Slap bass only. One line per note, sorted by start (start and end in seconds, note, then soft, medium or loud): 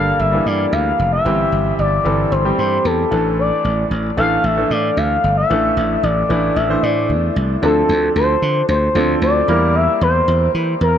0.00 0.12 G1 medium
0.19 0.38 G1 loud
0.46 0.65 G2 loud
0.72 0.92 D2 medium
0.99 1.18 F1 medium
1.26 1.45 G1 loud
1.52 1.71 G1 medium
1.79 1.98 G1 medium
2.05 2.24 G1 medium
2.32 2.51 G1 loud
2.58 2.77 G2 medium
2.85 3.04 E2 medium
3.12 3.50 A1 loud
3.64 3.84 A1 medium
3.91 4.10 A1 loud
4.17 4.37 A1 medium
4.44 4.63 A1 loud
4.71 4.90 A2 loud
4.97 5.16 D2 medium
5.24 5.43 G1 loud
5.50 5.69 A1 loud
5.77 5.96 A1 loud
6.03 6.22 A1 loud
6.30 6.49 A1 medium
6.56 6.75 A1 loud
6.83 7.11 A2 medium
7.10 7.29 E2 medium
7.36 7.55 C2 medium
7.63 7.82 D2 loud
7.89 8.08 D2 loud
8.16 8.35 D2 medium
8.42 8.61 D3 medium
8.69 8.88 D2 loud
8.95 9.14 D2 loud
9.22 9.41 D2 medium
9.48 9.86 E2 loud
10.01 10.21 E2 loud
10.28 10.47 E2 loud
10.55 10.74 E3 loud
10.81 10.98 E2 loud